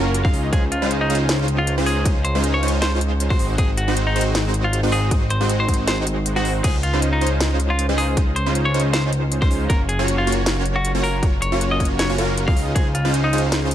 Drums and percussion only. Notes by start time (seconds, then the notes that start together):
0.14 closed hi-hat
0.25 kick
0.34 open hi-hat
0.53 kick, closed hi-hat
0.72 closed hi-hat
0.91 closed hi-hat
1.10 closed hi-hat
1.15 closed hi-hat
1.29 snare, closed hi-hat
1.48 closed hi-hat
1.67 closed hi-hat
1.86 open hi-hat
2.05 kick, closed hi-hat
2.25 closed hi-hat
2.44 closed hi-hat
2.63 closed hi-hat
2.68 closed hi-hat
2.82 snare, closed hi-hat
3.01 closed hi-hat
3.20 closed hi-hat
3.30 kick
3.39 open hi-hat
3.58 kick, closed hi-hat
3.77 closed hi-hat
3.97 closed hi-hat
4.16 closed hi-hat
4.21 closed hi-hat
4.35 snare, closed hi-hat
4.54 closed hi-hat
4.73 closed hi-hat
4.92 open hi-hat
5.11 kick, closed hi-hat
5.30 closed hi-hat
5.49 closed hi-hat
5.69 kick, closed hi-hat
5.74 closed hi-hat
5.88 snare, closed hi-hat
6.07 closed hi-hat
6.26 closed hi-hat
6.45 open hi-hat
6.64 kick, closed hi-hat, crash
6.83 closed hi-hat
7.02 closed hi-hat
7.21 closed hi-hat
7.27 closed hi-hat
7.41 snare, closed hi-hat
7.60 closed hi-hat
7.79 closed hi-hat
7.98 open hi-hat
8.17 kick, closed hi-hat
8.36 closed hi-hat
8.55 closed hi-hat
8.74 closed hi-hat
8.80 closed hi-hat
8.94 snare, closed hi-hat
9.13 closed hi-hat
9.32 closed hi-hat
9.42 kick
9.51 open hi-hat
9.70 kick, closed hi-hat
9.89 closed hi-hat
10.08 closed hi-hat
10.27 closed hi-hat
10.32 closed hi-hat
10.46 snare, closed hi-hat
10.65 closed hi-hat
10.85 closed hi-hat
11.04 open hi-hat
11.23 kick, closed hi-hat
11.42 closed hi-hat
11.61 closed hi-hat
11.80 kick, closed hi-hat
11.85 closed hi-hat
11.99 snare, closed hi-hat
12.18 closed hi-hat
12.37 closed hi-hat
12.48 kick
12.57 open hi-hat
12.76 kick, closed hi-hat
12.95 closed hi-hat
13.14 closed hi-hat
13.33 closed hi-hat
13.38 closed hi-hat
13.52 snare, closed hi-hat
13.71 closed hi-hat